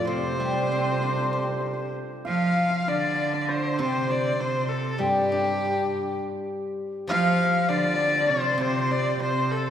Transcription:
Already playing: hammered dulcimer F4 A4 D5 F5
0.05 guzheng C3, cello C3, erhu C5, hammered dulcimer C5, dizi C5
0.18 hammered dulcimer C5
0.24 hammered dulcimer C5
0.32 hammered dulcimer C5
0.38 guzheng G3, hammered dulcimer C5
0.47 hammered dulcimer C5
0.54 hammered dulcimer C5
0.63 hammered dulcimer C5
0.69 guzheng C4, hammered dulcimer C5
0.78 hammered dulcimer C5
0.86 hammered dulcimer C5
0.93 hammered dulcimer C5
1.01 guzheng D4, hammered dulcimer C5
1.09 hammered dulcimer C5
1.17 hammered dulcimer C5
1.22 hammered dulcimer C5
1.30 guzheng G4, hammered dulcimer C5
1.38 hammered dulcimer C5
1.46 hammered dulcimer C5
1.52 hammered dulcimer C5
1.60 hammered dulcimer C5
1.67 hammered dulcimer C5
1.73 hammered dulcimer C5
2.25 cello F3, hammered dulcimer F5, erhu F5, dizi F5
2.70 hammered dulcimer F5
2.88 cello D3, hammered dulcimer D5, erhu D5, dizi D5
3.34 hammered dulcimer D5
3.42 erhu D5, dizi D5
3.49 hammered dulcimer C5, erhu C5, dizi C5
3.79 guzheng C3, cello C3, hammered dulcimer C5, erhu C5, dizi C5
4.10 hammered dulcimer D5, erhu D5
4.33 hammered dulcimer D5
4.40 cello C3, erhu C5, hammered dulcimer C5, dizi C5
4.69 erhu A4, dizi A4
4.94 dizi A4
4.98 cello G2, guzheng G3, erhu G4, hammered dulcimer G4, dizi G4
5.32 guzheng D4
7.07 guzheng F3, cello F3, erhu F5, hammered dulcimer F5, dizi F5
7.69 cello D3, dizi D5, erhu D5, hammered dulcimer D5
7.78 hammered dulcimer D5
7.84 hammered dulcimer D5
7.94 hammered dulcimer D5
7.99 hammered dulcimer D5
8.21 hammered dulcimer D5
8.26 cello C3, erhu C5, hammered dulcimer D5
8.35 hammered dulcimer D5
8.43 hammered dulcimer D5
8.53 hammered dulcimer D5
8.58 guzheng C3, cello C3, hammered dulcimer C5, erhu C5
8.62 dizi C5
8.91 hammered dulcimer D5, erhu D5
9.20 cello C3, hammered dulcimer C5, erhu C5, dizi C5
9.51 erhu A4, dizi A4

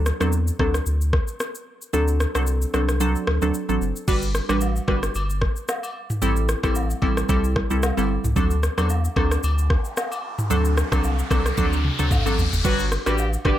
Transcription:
Already playing: sub bass D2
0.06 cross-stick, shaker
0.20 sub bass E2, synth pluck F#3 C4 D4 A4, cross-stick, shaker
0.32 shaker
0.47 shaker
0.59 sub bass D2, synth pluck F#3 C4 D4 A4, kick, cross-stick
0.74 cross-stick, shaker
0.86 sub bass D2, shaker
1.01 shaker
1.13 kick, cross-stick
1.28 shaker
1.40 cross-stick, shaker
1.55 shaker
1.82 shaker
1.93 sub bass D2, synth pluck F#3 C4 D4 A4, shaker
2.08 shaker
2.20 cross-stick, shaker
2.35 sub bass C2, synth pluck F#3 C4 D4 A4, cross-stick, shaker
2.47 shaker
2.62 shaker
2.74 sub bass C2, synth pluck F#3 C4 D4 A4, cross-stick, shaker
2.89 cross-stick, shaker
3.00 synth pluck F#3 C4 D4 A4, shaker
3.16 shaker
3.27 sub bass D2, cross-stick
3.42 sub bass D2, synth pluck F#3 C4 D4 A4, shaker
3.54 shaker
3.69 sub bass A1, synth pluck F#3 C4 D4 A4, shaker
3.81 sub bass F#1, shaker
3.96 shaker
4.08 sub bass G1, synth pluck G3 D4 F#4 B4, kick, crash, high agogo, shaker
4.22 shaker
4.35 cross-stick, shaker
4.49 sub bass A1, synth pluck G3 D4 F#4 B4, cross-stick, high agogo, shaker
4.61 low woodblock, shaker
4.76 shaker
4.88 sub bass G1, synth pluck G3 D4 F#4 B4, kick, cross-stick, high agogo
5.03 cross-stick, shaker
5.15 sub bass G1, high agogo, shaker
5.30 shaker
5.41 kick, cross-stick
5.56 shaker
5.68 cross-stick, low woodblock, shaker
5.83 high agogo, shaker
6.10 mid tom, shaker
6.22 sub bass A1, synth pluck G3 C4 E4 A4, high agogo, shaker
6.36 shaker
6.49 cross-stick, shaker
6.63 sub bass A1, synth pluck G3 C4 E4 A4, kick, cross-stick, high agogo, shaker
6.75 low woodblock, shaker
6.90 shaker
7.02 sub bass A1, synth pluck G3 C4 E4 A4, kick, high agogo
7.17 cross-stick, shaker
7.29 sub bass C2, synth pluck G3 C4 E4 A4, kick, high agogo, shaker
7.44 shaker
7.56 kick, cross-stick
7.70 sub bass C2, synth pluck G3 C4 E4 A4, shaker
7.83 cross-stick, low woodblock, shaker
7.97 sub bass G1, synth pluck G3 C4 E4 A4, high agogo, shaker
8.24 sub bass C2, mid tom, shaker
8.36 sub bass D2, synth pluck F#3 C4 D4 A4, kick, riser, high agogo, shaker
8.51 shaker
8.63 cross-stick, shaker
8.78 sub bass E2, synth pluck F#3 C4 D4 A4, cross-stick, high agogo, shaker
8.89 low woodblock, shaker
9.05 shaker
9.16 sub bass D2, synth pluck F#3 C4 D4 A4, kick, cross-stick, high agogo
9.31 cross-stick, shaker
9.43 sub bass D2, high agogo, shaker
9.58 shaker
9.70 kick, cross-stick
9.85 shaker
9.97 cross-stick, low woodblock, shaker
10.12 high agogo, shaker
10.39 mid tom, shaker
10.50 sub bass D2, synth pluck F#3 C4 D4 A4, high agogo, shaker
10.65 shaker
10.77 cross-stick, shaker
10.92 sub bass C2, synth pluck F#3 C4 D4 A4, kick, cross-stick, high agogo, shaker
11.04 low woodblock, shaker
11.19 shaker
11.30 sub bass C2, synth pluck F#3 C4 D4 A4, kick, cross-stick, high agogo, shaker
11.46 cross-stick, shaker
11.57 sub bass D2, synth pluck F#3 C4 D4 A4, kick, high tom, high agogo, shaker
11.73 shaker
11.85 mid tom
11.99 sub bass D2, synth pluck F#3 C4 D4 A4, mid tom, shaker
12.11 kick, mid tom, low woodblock, shaker
12.26 sub bass A1, synth pluck F#3 C4 D4 A4, high agogo, shaker
12.38 floor tom, shaker
12.53 sub bass F#1, floor tom, shaker
12.64 sub bass G1, horn section F#3 F#4, synth pluck G3 D4 F#4 B4, kick, crash, high agogo, shaker
12.79 shaker
12.92 cross-stick, shaker
13.06 sub bass A1, synth pluck G3 D4 F#4 B4, horn section G3 G4, cross-stick, high agogo, shaker
13.18 low woodblock, shaker
13.33 shaker
13.45 sub bass G1, synth pluck G3 D4 F#4 B4, horn section G3 G4, kick, cross-stick, high agogo

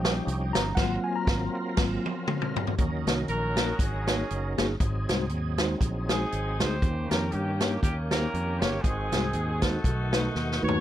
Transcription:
Already playing: fingered electric bass A#1, tine electric piano F3 G3 C#4 G5, tonewheel organ F3 C#4 D#4 G4
0.05 snare, closed hi-hat
0.27 fingered electric bass C2, closed hi-hat
0.53 fingered electric bass G1, tine electric piano A#5, snare, closed hi-hat
0.75 fingered electric bass G#1, tine electric piano F#3 A#3 C4 F4 F#5, tonewheel organ F#3 C4 F4 A#4, kick, snare, crash
1.04 tine electric piano G#5
1.16 tine electric piano A#5
1.27 fingered electric bass G#1, kick, snare
1.77 fingered electric bass G#1, tine electric piano F#3 A#3 C4 F4, kick, snare, crash
2.06 high tom
2.27 mid tom
2.42 mid tom
2.56 floor tom
2.67 floor tom
2.78 fingered electric bass D#2, tine electric piano D#3, tonewheel organ F#3 C#4 D#4 A#4, kick, closed hi-hat
3.07 fingered electric bass C2, tine electric piano A#3 D#4 F#4 C#5, snare, closed hi-hat
3.28 fingered electric bass A#1, horn section C#4 F#4 A#4, closed hi-hat
3.57 tine electric piano A#3 D#4 F#4 A#4, snare, closed hi-hat
3.79 fingered electric bass G#1, horn section C#4 G#4, kick, closed hi-hat
4.07 tine electric piano A#3 D#4 F#4 C#5, snare, closed hi-hat
4.30 fingered electric bass F#1, closed hi-hat
4.58 fingered electric bass G1, tine electric piano A#3 D#4 F#4 G#4, snare, closed hi-hat
4.80 fingered electric bass G#1, tine electric piano G#2, tonewheel organ F#3 C4 D#4 G#4, kick, closed hi-hat
5.09 fingered electric bass C2, tine electric piano G#3 D#4 F#4 C5, snare, closed hi-hat
5.29 fingered electric bass D#2, closed hi-hat
5.58 tine electric piano G#3 D#4 F#4 C5, snare, closed hi-hat
5.81 fingered electric bass A#1, kick, closed hi-hat
6.09 tine electric piano G#3 D#4 F#4 C5, horn section C4 D#4 G#4, snare, closed hi-hat
6.32 fingered electric bass G#1, closed hi-hat
6.60 fingered electric bass D2, tine electric piano G#3 D#4 F#4 G#4, horn section G4 C5, snare, closed hi-hat
6.82 fingered electric bass D#2, tine electric piano D#3, tonewheel organ D#3 A#3 C#4 G4, kick, closed hi-hat
7.10 fingered electric bass F2, tine electric piano A#3 D#4 G4 C#5, horn section A#4, snare, closed hi-hat
7.32 fingered electric bass G2, horn section A#3 C#4 G4, closed hi-hat
7.60 tine electric piano A#3 D#4 G4 C#5, snare, closed hi-hat
7.83 fingered electric bass D#2, horn section A#3 C#4 G4, kick, closed hi-hat
8.11 tine electric piano A#3 D#4 G4 C5, horn section C#4 G4 A#4, snare, closed hi-hat
8.34 fingered electric bass F2, closed hi-hat
8.61 fingered electric bass G1, tine electric piano A#3 D#4 G4 C#5, horn section C#5, snare, closed hi-hat
8.82 fingered electric bass G#1, tine electric piano G#2, tonewheel organ D#3 G#3 C4 F#4, horn section C4 D#4 G#4, kick, closed hi-hat
9.12 fingered electric bass C2, tine electric piano G#3 D#4 F#4 C5, snare, closed hi-hat
9.33 fingered electric bass D#2, closed hi-hat
9.62 tine electric piano G#3 D#4 F#4 C5, horn section D#4 F#4 A4, kick, snare, closed hi-hat
9.84 fingered electric bass B1, tine electric piano B2, tonewheel organ D#3 A3 B3 F4, kick, closed hi-hat
9.91 tonewheel organ F#4
10.13 tine electric piano A3 D#4 F#4 B4, snare, closed hi-hat
10.35 fingered electric bass D#2, snare
10.52 snare
10.62 fingered electric bass D#2, tine electric piano A3 D#4 F#4 B4, horn section C#5
10.68 floor tom

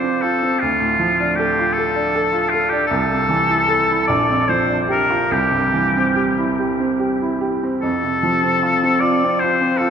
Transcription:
Already playing: grand piano F2 C3 F3 C4 F4, oboe C5
0.04 grand piano C4
0.21 grand piano F4, oboe A4
0.43 grand piano C4
0.60 grand piano D2, oboe F4
0.81 grand piano A2
1.00 grand piano F3
1.20 grand piano D4
1.35 oboe G4
1.39 grand piano A4
1.59 grand piano F4
1.73 oboe A4
1.78 grand piano A4
1.95 grand piano D4
2.15 grand piano A4
2.33 grand piano F4
2.49 oboe F4
2.54 grand piano A4
2.69 grand piano D4, oboe G4
2.87 grand piano C2, oboe A4
3.10 grand piano C3
3.29 grand piano E3
3.49 grand piano E4
3.69 grand piano A4
3.90 grand piano E4
4.07 grand piano A#1, oboe D5
4.30 grand piano F2
4.48 grand piano F3, oboe C5
4.69 grand piano D4
4.88 grand piano G4, oboe A#4
5.10 grand piano F4
5.31 grand piano C2, oboe G4
5.52 grand piano G2
5.72 grand piano E3
5.97 grand piano C4
6.16 grand piano G4
6.38 grand piano E4
6.59 grand piano G4
6.80 grand piano C4
7.00 grand piano G4
7.22 grand piano E4
7.41 grand piano G4
7.63 grand piano C4
7.82 grand piano F2, oboe A4
8.03 grand piano C3
8.23 grand piano F3
8.43 grand piano C4
8.63 grand piano F4
8.83 grand piano C4
9.00 grand piano F4, oboe D5
9.24 grand piano C4
9.39 grand piano F4, oboe C5
9.61 grand piano C4
9.77 grand piano F4, oboe A4

